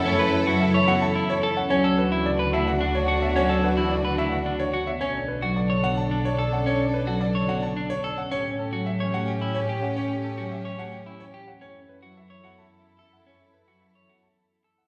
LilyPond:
<<
  \new Staff \with { instrumentName = "Grand piano" } { \time 3/4 \key d \major \tempo 4 = 109 cis''16 r16 b'16 r16 e''16 r16 fis''16 a''16 r16 cis''16 r16 fis''16 | cis''16 r16 b'16 r16 d''16 r16 e''16 fis''16 r16 cis''16 r16 e''16 | cis''16 r16 b'16 r16 d''16 r16 e''16 fis''16 r16 cis''16 r16 e''16 | cis''16 r16 b'16 r16 d''16 r16 fis''16 a''16 r16 cis''16 r16 fis''16 |
cis''16 r16 b'16 r16 d''16 r16 fis''16 a''16 r16 cis''16 r16 fis''16 | cis''16 r16 a'16 r16 e''16 r16 fis''16 g''16 r16 cis''16 r16 fis''16 | cis''16 r16 a'16 r16 e''16 r16 fis''16 g''16 r16 cis''16 r16 fis''16 | cis''16 r16 b'16 r16 e''16 r16 fis''16 a''16 r8. fis''16 |
cis''16 r16 b'16 r16 e''16 r16 fis''16 a''16 r8. fis''16 | }
  \new Staff \with { instrumentName = "Clean electric guitar" } { \time 3/4 \key d \major cis'16 b'16 r16 fis'16 r16 cis''16 fis'16 r16 e'16 r16 a'16 r16 | cis'16 a'16 r16 e'16 r16 b'16 e'16 r16 d'16 r16 fis'16 r16 | cis'16 a'16 r16 e'16 r16 b'16 e'16 r16 d'16 r16 fis'16 r16 | cis'16 r8 fis'16 r16 cis''16 fis'16 r16 d'16 r16 a'16 r16 |
cis'16 r8 fis'16 r16 cis''16 fis'16 r16 d'16 r16 a'16 r16 | cis'16 r8 fis'16 r16 cis''16 fis'16 r16 e'16 r16 g'16 r16 | cis'16 r8 fis'16 r16 cis''16 fis'16 r16 e'16 r16 g'16 r16 | cis'16 r8 fis'16 r16 cis''16 fis'16 r8. a'16 r16 |
cis'16 r8 fis'16 r16 cis''16 fis'16 r8. a'16 r16 | }
  \new Staff \with { instrumentName = "String section" } { \time 3/4 \key d \major <e' a'>2~ <e' a'>8. r16 | <d' fis'>2.~ | <d' fis'>2~ <d' fis'>8. r16 | <d' a'>2.~ |
<d' a'>2~ <d' a'>8. r16 | <cis' g'>2.~ | <cis' g'>2~ <cis' g'>8. r16 | <e' a'>2.~ |
<e' a'>2~ <e' a'>8. r16 | }
  \new Staff \with { instrumentName = "Soprano saxophone" } { \time 3/4 \key d \major e'2~ e'8. r16 | fis'2.~ | fis'2~ fis'8. r16 | d'2.~ |
d'2~ d'8. r16 | cis'2.~ | cis'2~ cis'8. r16 | e'2.~ |
e'2~ e'8. r16 | }
  \new Staff \with { instrumentName = "Marimba" } { \clef bass \time 3/4 \key d \major a16 r8 fis16 cis16 e16 b16 e16 r8. cis'16 | fis16 r8 e16 cis16 d16 a16 d16 r8. b16 | fis16 r8 e16 cis16 d16 a16 d16 r8. b16 | r8. fis16 cis16 d16 b16 d16 r8. cis'16 |
r8. fis16 cis16 d16 b16 d16 r8. cis'16 | r8. fis16 r16 e16 a16 e16 r8. cis'16 | r8. fis16 r16 e16 a16 e16 r8. cis'16 | r8. fis16 r16 e16 b16 e16 r4 |
r8. fis16 r16 e16 b16 e16 r4 | }
  \new Staff \with { instrumentName = "Double bass" } { \clef bass \time 3/4 \key d \major fis,2. | d,2.~ | d,2. | b,,2.~ |
b,,2. | a,2.~ | a,2. | fis,2.~ |
fis,2. | }
>>